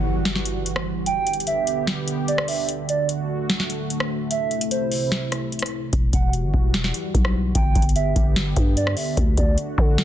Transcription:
0.00 1.05 E3 medium
0.00 1.05 G3 medium
0.00 1.05 F#4 medium
0.00 impact medium
0.25 snare loud
0.25 closed hi-hat medium
0.36 snare medium
0.46 closed hi-hat medium
0.66 closed hi-hat medium
0.76 cross-stick loud
1.06 4.28 D3 medium
1.06 2.67 B3 medium
1.06 2.67 G4 medium
1.06 1.44 G5 loud
1.06 closed hi-hat medium
1.27 closed hi-hat medium
1.33 closed hi-hat medium
1.40 closed hi-hat medium
1.47 1.85 E5 medium
1.47 closed hi-hat medium
1.67 closed hi-hat medium
1.87 snare loud
1.87 closed hi-hat medium
2.08 closed hi-hat medium
2.28 2.47 D5 medium
2.28 closed hi-hat medium
2.38 cross-stick loud
2.48 2.68 E5 medium
2.48 open hi-hat medium
2.69 5.90 A3 medium
2.69 4.29 F#4 medium
2.69 closed hi-hat medium
2.89 3.08 D5 medium
2.89 closed hi-hat medium
3.09 closed hi-hat medium
3.50 snare loud
3.50 closed hi-hat medium
3.60 snare medium
3.70 closed hi-hat medium
3.90 closed hi-hat medium
4.00 cross-stick loud
4.31 5.91 C3 medium
4.31 5.91 E4 medium
4.31 4.69 E5 loud
4.31 closed hi-hat medium
4.51 closed hi-hat medium
4.61 closed hi-hat medium
4.71 5.48 C5 medium
4.71 closed hi-hat medium
4.92 open hi-hat medium
5.12 snare loud
5.12 closed hi-hat medium
5.32 cross-stick medium
5.32 closed hi-hat medium
5.52 closed hi-hat soft
5.59 cross-stick loud
5.59 closed hi-hat medium
5.66 closed hi-hat medium
5.93 6.12 E1 loud
5.93 7.53 E3 medium
5.93 7.53 G3 medium
5.93 7.53 F#4 medium
5.93 kick loud
5.93 closed hi-hat medium
6.13 6.45 E1 loud
6.13 6.33 F#5 medium
6.13 kick loud
6.13 closed hi-hat medium
6.33 closed hi-hat medium
6.44 6.53 G1 loud
6.54 6.93 E1 loud
6.54 kick loud
6.74 snare loud
6.74 closed hi-hat medium
6.84 snare medium
6.94 closed hi-hat medium
7.14 7.53 B1 loud
7.14 kick medium
7.14 closed hi-hat medium
7.25 cross-stick medium
7.55 7.75 G1 loud
7.55 10.04 D3 medium
7.55 9.16 B3 medium
7.55 9.16 G4 medium
7.55 7.93 G5 loud
7.55 kick loud
7.55 closed hi-hat medium
7.75 8.14 G1 loud
7.75 kick loud
7.75 closed hi-hat medium
7.82 closed hi-hat medium
7.89 closed hi-hat medium
7.96 8.34 E5 medium
7.96 closed hi-hat medium
8.16 8.55 G1 loud
8.16 kick loud
8.16 closed hi-hat medium
8.36 snare loud
8.36 closed hi-hat medium
8.56 8.95 G2 loud
8.56 kick loud
8.56 closed hi-hat medium
8.76 8.96 D5 medium
8.76 closed hi-hat medium
8.87 cross-stick loud
8.97 9.16 E5 medium
8.97 open hi-hat medium
9.17 9.37 D2 loud
9.17 10.04 A3 medium
9.17 10.04 F#4 medium
9.17 kick loud
9.17 closed hi-hat medium
9.37 9.57 D2 loud
9.37 9.57 D5 medium
9.37 kick medium
9.37 closed hi-hat medium
9.58 closed hi-hat medium
9.78 10.04 D3 loud
9.78 kick loud
9.98 snare loud
9.98 closed hi-hat medium

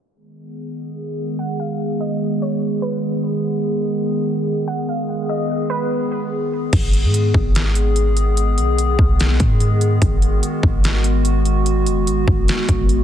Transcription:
0.15 6.69 D#3 medium
0.15 6.69 G#3 medium
0.15 6.69 B3 medium
0.15 6.69 G#4 medium
1.39 1.58 F#5 medium
1.60 1.79 F5 medium
2.01 2.39 D#5 medium
2.42 2.80 C#5 medium
2.82 3.40 B4 medium
4.68 4.87 F#5 loud
4.89 5.08 F5 medium
5.29 5.68 D#5 medium
5.70 6.28 B4 medium
6.73 7.05 G#1 loud
6.73 13.04 D#3 medium
6.73 13.04 G#3 medium
6.73 13.04 B3 medium
6.73 9.98 G#4 medium
6.73 kick loud
6.73 closed hi-hat medium
6.73 crash medium
6.93 closed hi-hat medium
7.04 7.33 G#2 loud
7.14 closed hi-hat medium
7.34 8.59 G#1 loud
7.34 kick medium
7.55 snare loud
7.55 closed hi-hat medium
7.75 closed hi-hat medium
7.96 closed hi-hat medium
8.17 closed hi-hat medium
8.37 closed hi-hat medium
8.58 8.97 B1 medium
8.58 closed hi-hat medium
8.79 closed hi-hat medium
8.99 9.38 B1 loud
8.99 kick medium
9.20 snare loud
9.20 closed hi-hat medium
9.40 9.99 G#2 loud
9.40 kick medium
9.40 closed hi-hat medium
9.60 closed hi-hat medium
9.81 closed hi-hat medium
10.02 10.41 G#1 loud
10.02 13.04 F#4 medium
10.02 kick loud
10.02 closed hi-hat medium
10.22 closed hi-hat medium
10.43 closed hi-hat medium
10.63 11.88 G#1 loud
10.63 kick loud
10.84 snare loud
10.84 closed hi-hat medium
11.04 closed hi-hat medium
11.25 closed hi-hat medium
11.45 closed hi-hat medium
11.66 closed hi-hat medium
11.87 12.09 F#1 loud
11.87 closed hi-hat medium
12.07 12.27 G#1 medium
12.07 closed hi-hat medium
12.28 12.47 G#1 loud
12.28 kick medium
12.48 snare loud
12.48 closed hi-hat medium
12.69 13.04 G#1 loud
12.69 kick medium
12.69 closed hi-hat medium
12.89 closed hi-hat medium

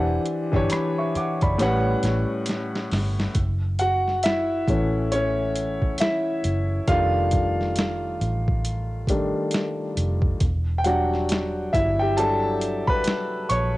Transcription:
0.00 0.17 E1 loud
0.00 0.32 E3 medium
0.00 0.33 D4 medium
0.00 0.34 G4 medium
0.00 1.60 C5 medium
0.00 0.35 F#5 medium
0.00 1.60 A5 medium
0.26 closed hi-hat medium
0.52 0.67 G1 medium
0.52 0.83 E3 medium
0.52 0.84 D4 medium
0.52 0.84 G4 medium
0.52 kick medium
0.52 cross-stick soft
0.56 0.72 C#5 medium
0.70 0.96 D5 soft
0.70 0.96 B5 medium
0.70 cross-stick loud
0.70 closed hi-hat medium
0.98 1.15 E5 medium
0.98 1.14 C#6 medium
1.15 1.41 F#5 medium
1.15 1.41 D6 medium
1.15 muted fingered electric bass stroke soft
1.15 closed hi-hat soft
1.41 1.56 F#1 medium
1.41 1.84 D5 medium
1.41 1.84 B5 medium
1.41 kick medium
1.41 cross-stick soft
1.41 closed hi-hat soft
1.58 1.94 A1 medium
1.58 3.01 A2 medium
1.58 3.02 G3 medium
1.58 3.02 C#4 medium
1.58 3.03 B4 medium
1.58 snare medium
1.58 closed hi-hat medium
1.62 3.03 F#5 loud
2.03 2.24 A1 medium
2.03 snare medium
2.03 closed hi-hat medium
2.46 snare medium
2.46 closed hi-hat medium
2.75 snare medium
2.91 3.26 G1 medium
2.91 snare medium
2.91 open hi-hat soft
3.20 snare medium
3.35 4.64 F#1 medium
3.35 kick loud
3.35 closed hi-hat medium
3.79 4.21 F#4 medium
3.79 4.25 F#5 medium
3.79 closed hi-hat medium
4.08 snare soft
4.23 5.09 E4 medium
4.23 5.08 E5 medium
4.23 snare loud
4.23 closed hi-hat medium
4.68 5.78 A1 loud
4.68 5.96 E3 medium
4.68 5.97 A3 medium
4.68 5.12 C#4 medium
4.68 kick loud
4.68 closed hi-hat medium
5.12 5.97 C#4 medium
5.12 5.96 C#5 medium
5.12 closed hi-hat medium
5.56 closed hi-hat medium
5.82 kick medium
5.98 6.85 E4 medium
5.98 6.91 E5 medium
5.98 snare loud
5.98 closed hi-hat medium
6.44 6.79 F#1 medium
6.44 closed hi-hat medium
6.88 8.16 F1 loud
6.88 7.50 D#3 medium
6.88 7.50 G3 soft
6.88 7.50 A3 soft
6.88 7.50 D4 medium
6.88 8.17 F4 medium
6.88 8.16 F5 medium
6.88 kick loud
6.88 closed hi-hat medium
7.31 kick medium
7.31 closed hi-hat medium
7.61 snare soft
7.76 snare loud
7.76 closed hi-hat medium
8.21 9.31 A1 medium
8.21 closed hi-hat soft
8.48 kick medium
8.65 closed hi-hat medium
9.07 9.49 D#3 soft
9.07 9.49 G3 soft
9.07 9.49 A3 soft
9.07 9.49 D4 medium
9.07 kick medium
9.07 closed hi-hat medium
9.51 snare loud
9.51 closed hi-hat medium
9.97 10.32 F1 medium
9.97 closed hi-hat medium
10.22 kick loud
10.40 11.69 E1 loud
10.40 kick loud
10.40 closed hi-hat medium
10.78 10.85 G5 medium
10.84 11.47 F#3 medium
10.84 11.47 G3 soft
10.84 11.48 D4 medium
10.84 11.70 F#4 medium
10.84 11.76 F#5 medium
10.84 closed hi-hat medium
11.13 snare soft
11.29 snare loud
11.29 closed hi-hat medium
11.73 12.84 G1 medium
11.73 11.99 E4 medium
11.73 12.00 E5 medium
11.73 kick loud
11.73 closed hi-hat medium
11.99 12.17 G4 medium
11.99 12.16 G5 medium
12.17 12.58 F#3 medium
12.17 12.58 G3 soft
12.17 12.58 D4 medium
12.17 12.85 A4 medium
12.17 12.90 A5 medium
12.17 closed hi-hat medium
12.61 closed hi-hat medium
12.87 13.47 B4 medium
12.87 13.51 B5 medium
12.87 kick medium
13.04 snare loud
13.04 closed hi-hat medium
13.49 13.78 A#1 loud
13.49 13.78 C#5 medium
13.49 13.78 C#6 medium
13.49 closed hi-hat medium

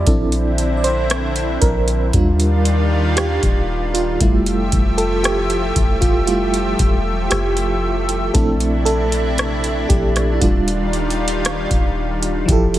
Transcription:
0.00 0.73 D5 loud
0.07 1.58 A#1 loud
0.07 2.12 D3 medium
0.07 2.12 C4 medium
0.07 2.10 C4 medium
0.07 2.10 D4 soft
0.07 2.12 E4 medium
0.07 2.11 E4 medium
0.07 2.10 A4 medium
0.07 kick loud
0.07 closed hi-hat medium
0.32 closed hi-hat soft
0.58 closed hi-hat medium
0.77 0.84 D5 medium
0.84 1.64 C5 loud
0.84 closed hi-hat medium
1.10 cross-stick loud
1.10 closed hi-hat medium
1.36 closed hi-hat soft
1.61 2.12 A#1 loud
1.61 3.13 A#4 medium
1.61 kick medium
1.61 closed hi-hat medium
1.88 closed hi-hat medium
2.13 3.39 D#2 loud
2.13 4.19 D#3 medium
2.13 3.65 G3 medium
2.13 4.19 G3 medium
2.13 4.19 D4 medium
2.13 3.65 D4 soft
2.13 4.19 F4 medium
2.13 3.66 F4 medium
2.13 kick loud
2.13 closed hi-hat medium
2.40 closed hi-hat soft
2.65 closed hi-hat medium
3.16 3.91 G4 medium
3.16 cross-stick loud
3.16 closed hi-hat medium
3.43 4.18 D#1 medium
3.43 kick medium
3.43 closed hi-hat soft
3.94 4.94 F4 medium
3.94 closed hi-hat medium
4.21 4.70 F1 loud
4.21 8.31 F3 medium
4.21 5.72 G3 medium
4.21 10.37 A3 medium
4.21 5.72 A3 soft
4.21 5.73 E4 medium
4.21 8.31 G4 medium
4.21 8.31 E5 medium
4.21 kick loud
4.21 closed hi-hat medium
4.46 closed hi-hat soft
4.72 5.72 F1 loud
4.72 kick medium
4.72 closed hi-hat medium
4.98 5.09 A4 medium
4.98 closed hi-hat medium
5.24 6.04 G4 medium
5.24 cross-stick loud
5.24 closed hi-hat medium
5.50 closed hi-hat soft
5.76 6.75 F1 loud
5.76 kick medium
5.76 closed hi-hat medium
6.01 6.25 F4 medium
6.01 kick medium
6.01 closed hi-hat medium
6.27 6.75 G3 soft
6.27 6.76 A3 soft
6.27 6.76 E4 medium
6.27 7.34 F4 medium
6.27 closed hi-hat medium
6.54 closed hi-hat soft
6.79 7.29 E1 loud
6.79 kick loud
6.79 closed hi-hat medium
7.30 8.31 F1 loud
7.30 8.37 G4 medium
7.30 cross-stick loud
7.30 closed hi-hat medium
7.57 closed hi-hat soft
8.09 closed hi-hat medium
8.34 9.86 A#1 loud
8.34 10.39 C3 medium
8.34 9.03 A3 medium
8.34 9.04 C4 medium
8.34 12.44 D4 medium
8.34 9.04 D4 medium
8.34 10.39 E4 medium
8.34 9.04 E4 medium
8.34 8.84 A4 medium
8.34 kick loud
8.34 closed hi-hat medium
8.60 closed hi-hat soft
8.85 9.92 A4 medium
8.85 closed hi-hat medium
9.12 closed hi-hat medium
9.38 cross-stick loud
9.38 closed hi-hat medium
9.64 closed hi-hat soft
9.89 10.39 A#1 loud
9.89 10.31 G4 medium
9.89 kick medium
9.89 closed hi-hat medium
10.16 cross-stick medium
10.16 closed hi-hat soft
10.34 10.41 E4 medium
10.40 11.67 D#1 loud
10.40 12.46 D#3 medium
10.40 12.46 G3 medium
10.40 11.93 G3 medium
10.40 11.93 D4 soft
10.40 10.42 F4 medium
10.40 12.46 F4 medium
10.40 11.93 F4 medium
10.40 kick loud
10.40 closed hi-hat medium
10.68 closed hi-hat medium
10.93 closed hi-hat soft
11.10 closed hi-hat medium
11.28 closed hi-hat medium
11.45 cross-stick loud
11.45 closed hi-hat medium
11.71 12.45 D#1 medium
11.71 kick medium
11.71 closed hi-hat soft
12.23 closed hi-hat medium
12.46 12.79 F1 loud
12.46 12.79 F3 medium
12.46 12.79 A3 medium
12.46 12.79 E4 medium
12.46 12.79 G4 medium
12.46 kick loud
12.46 closed hi-hat medium
12.50 12.79 G4 medium
12.50 12.79 A4 medium
12.74 closed hi-hat soft

